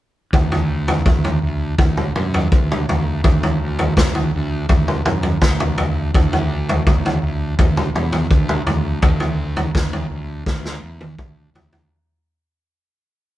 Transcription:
0.33 1.04 D2 medium
0.33 kick loud
0.33 floor tom medium
0.52 floor tom medium
0.88 floor tom medium
1.05 1.41 D2 medium
1.05 kick loud
1.05 floor tom medium
1.24 floor tom medium
1.42 1.78 D2 medium
1.78 2.14 D2 medium
1.78 kick loud
1.78 floor tom medium
1.97 mid tom medium
2.16 2.51 F#2 medium
2.16 mid tom medium
2.34 floor tom medium
2.52 2.87 D2 medium
2.52 kick loud
2.72 mid tom medium
2.89 3.24 D2 medium
2.89 floor tom medium
3.24 3.95 D2 medium
3.24 kick loud
3.24 floor tom medium
3.43 floor tom medium
3.79 floor tom medium
3.97 4.33 D2 medium
3.97 kick loud
3.97 snare medium
3.97 floor tom medium
4.15 floor tom medium
4.35 4.69 D2 medium
4.69 5.05 D2 medium
4.69 kick loud
4.69 floor tom medium
4.88 mid tom medium
5.06 5.41 F#2 medium
5.06 floor tom medium
5.06 mid tom medium
5.23 floor tom medium
5.41 5.77 D2 medium
5.41 kick loud
5.41 snare medium
5.41 mid tom medium
5.60 floor tom medium
5.60 mid tom medium
5.78 6.14 D2 medium
5.78 floor tom medium
6.14 6.85 D2 medium
6.14 kick loud
6.14 floor tom medium
6.33 floor tom medium
6.69 floor tom medium
6.86 7.21 D2 medium
6.86 kick medium
6.86 floor tom medium
7.06 floor tom medium
7.22 7.57 D2 medium
7.59 7.94 D2 medium
7.59 kick loud
7.59 floor tom medium
7.77 mid tom medium
7.94 8.30 E2 medium
7.94 mid tom medium
8.12 floor tom medium
8.31 8.66 D2 medium
8.31 kick loud
8.49 mid tom medium
8.66 9.01 D2 medium
8.66 floor tom medium
9.02 9.72 D2 medium
9.02 kick loud
9.02 floor tom medium
9.20 floor tom medium
9.57 floor tom medium
9.74 10.09 D2 medium
9.74 kick loud
9.74 snare medium
9.74 floor tom medium
9.93 floor tom medium
10.10 10.45 D2 medium
10.46 10.81 D2 medium
10.46 kick loud
10.46 snare medium
10.65 snare medium
10.83 11.17 E2 medium
11.01 high tom medium
11.19 11.53 D2 medium
11.19 kick loud
11.19 mid tom medium
11.54 11.89 D2 medium
11.54 floor tom medium
11.73 floor tom medium

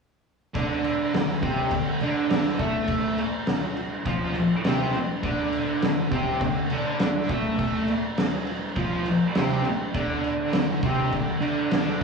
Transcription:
0.54 1.12 D3 loud
0.54 1.12 D4 loud
0.54 kick loud
0.54 crash medium
0.84 crash medium
1.14 1.37 D3 medium
1.14 snare loud
1.14 crash medium
1.42 1.71 C3 medium
1.42 1.71 C4 loud
1.42 kick loud
1.42 crash medium
1.71 1.95 D3 medium
1.71 kick medium
1.71 crash medium
2.00 2.59 D3 medium
2.00 2.60 D4 loud
2.00 crash medium
2.30 snare loud
2.30 crash loud
2.58 3.17 A3 loud
2.58 3.17 A4 loud
2.58 kick loud
2.58 crash medium
2.88 kick loud
2.88 crash medium
3.18 crash medium
3.47 snare loud
3.47 crash medium
3.77 crash medium
4.05 4.34 F3 medium
4.05 4.35 F4 loud
4.05 kick loud
4.05 crash medium
4.35 muted distorted electric guitar stroke medium
4.35 crash medium
4.64 4.93 C3 loud
4.64 4.94 C4 loud
4.64 snare loud
4.64 crash medium
4.94 muted distorted electric guitar stroke medium
4.94 crash medium
5.23 5.81 D3 medium
5.23 5.82 D4 loud
5.23 kick loud
5.23 crash medium
5.52 crash medium
5.82 6.06 D3 medium
5.82 snare loud
5.82 crash medium
6.10 6.40 C3 loud
6.10 6.40 C4 loud
6.10 kick loud
6.10 crash medium
6.41 6.65 D3 medium
6.41 kick loud
6.41 crash medium
6.70 7.29 D3 medium
6.70 7.29 D4 medium
6.70 crash medium
6.99 snare loud
6.99 crash medium
7.29 7.87 A3 medium
7.29 7.88 A4 loud
7.29 kick loud
7.29 crash medium
7.59 kick loud
7.59 crash medium
7.88 crash medium
8.17 snare loud
8.17 crash medium
8.47 crash medium
8.76 9.05 F3 medium
8.76 9.06 F4 medium
8.76 kick loud
8.76 crash medium
9.06 muted distorted electric guitar stroke medium
9.06 crash medium
9.35 9.64 C3 medium
9.35 9.65 C4 medium
9.35 snare loud
9.35 crash medium
9.65 muted distorted electric guitar stroke medium
9.65 crash medium
9.94 10.51 D3 medium
9.94 10.53 D4 loud
9.94 kick loud
9.94 crash medium
10.24 crash medium
10.53 10.77 D3 medium
10.53 snare loud
10.53 crash medium
10.83 11.12 C3 medium
10.83 11.12 C4 loud
10.83 kick loud
10.83 crash medium
11.12 11.36 D3 medium
11.12 kick medium
11.12 crash medium
11.41 11.99 D3 medium
11.41 12.00 D4 loud
11.41 crash medium
11.71 snare loud
11.71 crash medium
12.00 12.04 A3 medium

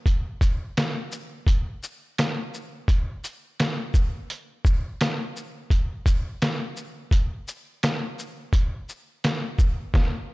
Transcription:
0.06 kick loud
0.06 closed hi-hat medium
0.41 kick loud
0.41 closed hi-hat medium
0.41 shaker medium
0.77 snare loud
0.77 closed hi-hat medium
1.12 shaker medium
1.47 kick medium
1.47 closed hi-hat medium
1.83 shaker medium
2.18 snare loud
2.18 closed hi-hat medium
2.54 shaker soft
2.88 kick loud
2.88 closed hi-hat medium
3.24 closed hi-hat medium
3.24 shaker medium
3.60 snare loud
3.60 closed hi-hat medium
3.94 kick medium
3.94 shaker medium
4.30 closed hi-hat medium
4.65 kick medium
4.65 shaker medium
5.01 snare loud
5.01 closed hi-hat medium
5.36 shaker soft
5.70 kick loud
5.70 closed hi-hat medium
6.06 kick loud
6.06 closed hi-hat medium
6.06 shaker medium
6.42 snare loud
6.42 closed hi-hat medium
6.77 shaker medium
7.11 kick loud
7.11 closed hi-hat medium
7.48 shaker medium
7.83 snare loud
7.83 closed hi-hat medium
8.19 shaker medium
8.53 kick loud
8.53 closed hi-hat medium
8.89 shaker medium
9.24 snare loud
9.24 closed hi-hat medium
9.59 kick medium
9.59 shaker soft
9.94 kick loud
9.94 snare medium

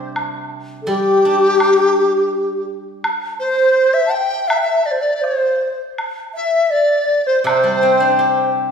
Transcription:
0.00 0.88 C3 medium
0.00 0.35 G3 soft
0.00 0.53 C4 soft
0.00 0.71 D4 soft
0.00 0.89 G4 soft
0.16 high woodblock medium
0.82 0.91 A4 medium
0.87 3.03 G3 medium
0.87 2.64 G4 medium
0.87 2.69 G4 loud
1.25 2.69 D4 soft
1.60 high woodblock medium
3.04 high woodblock medium
3.40 3.95 C5 medium
3.45 4.04 C5 medium
3.94 4.13 E5 medium
4.06 4.16 A5 medium
4.12 4.49 G5 medium
4.12 4.53 G5 medium
4.48 4.61 E5 medium
4.48 4.58 E5 medium
4.48 high woodblock medium
4.57 4.67 G5 medium
4.61 4.87 E5 medium
4.66 4.86 E5 medium
4.86 4.99 D5 medium
4.86 4.93 D5 medium
4.91 5.02 C5 medium
5.00 5.26 D5 medium
5.00 5.23 D5 medium
5.21 5.78 C5 medium
5.21 5.80 C5 medium
5.21 low woodblock soft
5.98 high woodblock medium
6.34 6.72 E5 medium
6.34 6.74 E5 medium
6.70 7.29 D5 medium
6.70 7.28 D5 medium
7.27 7.46 C5 medium
7.27 7.45 C5 medium
7.44 8.71 C3 medium
7.44 8.51 C5 medium
7.44 8.52 C5 medium
7.44 high woodblock medium
7.63 8.71 G3 soft
7.83 8.71 C4 soft
8.00 8.71 D4 soft
8.19 8.71 G4 soft

